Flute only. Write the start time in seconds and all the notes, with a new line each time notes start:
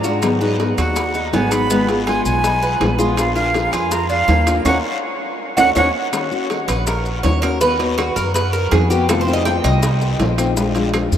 0.78 F#5
1.33 G#5
1.51 B5
2.06 G#5
2.25 G#5
3.17 F5
3.35 F5
3.72 G#5
3.92 A#5
4.10 F5
4.66 F#5
5.59 F#5
5.77 F#5